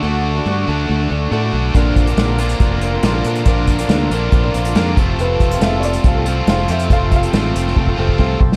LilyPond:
<<
  \new Staff \with { instrumentName = "Upright piano" } { \time 4/4 \key f \lydian \tempo 4 = 140 fis''4 r2. | r1 | r1 | b'4 e''8 <cis'' d''>4. f''8 e''8 |
<e'' f''>8 <e'' f''>2 r4. | }
  \new Staff \with { instrumentName = "Accordion" } { \time 4/4 \key f \lydian << { r1 | f''1~ | f''2.~ f''8 f''8~ | f''2.~ f''8 g''8~ |
g''1 | } \\ { r1 | <bes' d''>1~ | <bes' d''>2.~ <bes' d''>8 <c' a'>8~ | <c' a'>1~ |
<c' a'>1 | } >> }
  \new Staff \with { instrumentName = "Steel-string acoustic guitar" } { \time 4/4 \key f \lydian <d a d' fis' a'>8. <d' fis' a'>16 <d a d' fis' a'>8 <a d' fis' a'>8 <a d' fis' a'>16 <d' fis' a'>16 <a d' fis' a'>8 <d a d' fis' a'>16 <d' fis' a'>16 <a d' fis' a'>8 | <bes, d f c' d' bes'>8. <f c' d' bes'>16 <bes, d f c' d' bes'>8 <f c' d' bes'>8 <f c' d' bes'>16 <f c' d' bes'>16 <f c' d' bes'>16 <f c' d' bes'>16 <bes, d f c' d' bes'>16 <f c' d' bes'>16 <f c' d' bes'>8 | <bes, d f c' d' bes'>8. <f c' d' bes'>16 <bes, d f c' d' bes'>8 <f c' d' bes'>8 <f c' d' bes'>16 <f c' d' bes'>16 <f c' d' bes'>16 <f c' d' bes'>16 <bes, d f c' d' bes'>8 <f c' f' a'>8 | <f c' f' a'>8. <c' f' a'>16 <f c' f' a'>8 <f c' f' a'>8 <f c' f' a'>16 <c' f' a'>16 <f c' f' a'>8 <f c' f' a'>8 <f c' f' a'>8 |
<f c' f' a'>8. <c' f' a'>16 <f c' f' a'>8 <f c' f' a'>8 <f c' f' a'>16 <c' f' a'>16 <f c' f' a'>8 <f c' f' a'>8 <f c' f' a'>8 | }
  \new Staff \with { instrumentName = "Overdriven electric guitar" } { \time 4/4 \key f \lydian <d a d' fis'>4. <d a d' fis'>4. <d a d' fis'>4 | <bes, d bes d' f'>4. <bes, d bes d' f'>4. <bes, d bes d' f'>4 | <bes, d bes d' f'>4. <bes, d bes d' f'>4. <bes, d bes d' f'>8 <f, c f a c' f'>8~ | <f, c f a c' f'>4 <f, c f a c' f'>4. <f, c f a c' f'>4 <f, c f a c' f'>8~ |
<f, c f a c' f'>4 <f, c f a c' f'>4. <f, c f a c' f'>4 r8 | }
  \new Staff \with { instrumentName = "Fingered electric bass" } { \clef bass \time 4/4 \key f \lydian d,4 g,8 d,8 d,8 d,8 a,8 b,,8 | bes,,8 bes,,8 bes,,4 f,,4 bes,,8 bes,8 | bes,,4 d,8 bes,,8 bes,,8 bes,,8 f,8 f,,8 | f,,8 f,,8 f,,4 c,4 f,,8 f,8 |
f,,4 a,,8 f,,8 f,,8 f,,8 c,8 b,,8 | }
  \new DrumStaff \with { instrumentName = "Drums" } \drummode { \time 4/4 r4 r4 r4 r4 | <hh bd>8 <hh bd>16 hh16 <hh sn>8 hh16 hh16 <hh bd>8 hh8 <hh sn>8 hh16 hh16 | <hh bd>8 <hh bd>16 hh16 <hh sn>8 hh8 <hh bd>8 hh16 hh16 <hh sn>8 <hh bd>8 | hh8 <hh bd>16 hh16 <hh sn>8 hh16 <hh sn>16 <hh bd>8 hh8 <hh sn>8 hh16 hh16 |
<hh bd>8 <hh bd>16 hh16 <hh sn>8 hh16 sn16 bd16 bd8 bd16 bd8 bd16 sn16 | }
>>